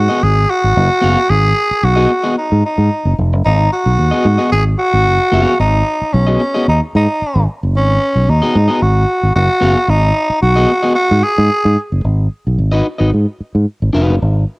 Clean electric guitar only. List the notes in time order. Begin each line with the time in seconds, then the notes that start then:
0.09 B3 F#4 G#4 D#5
1.01 B3 F#4 G#4 F5
1.96 B3 F#4 G#4 D#5
2.23 B3 F#4 G#4 D#5
4.11 B3 F#4 G#4 D#5
4.38 B3 F#4 G#4 D#5
5.32 B3 F#4 G#4 F5
6.27 B3 F#4 G#4 D#5
6.54 B3 F#4 G#4 D#5
8.42 B3 F#4 G#4 D#5
8.68 B3 F#4 G#4 D#5
9.61 B3 F#4 G#4 F5
10.56 B3 F#4 G#4 D#5
10.83 B3 F#4 G#4 D#5
12.72 D#4 F#4 B4 D#5
12.99 D#4 F#4 B4 D#5
13.93 D#4 F#4 B4 F5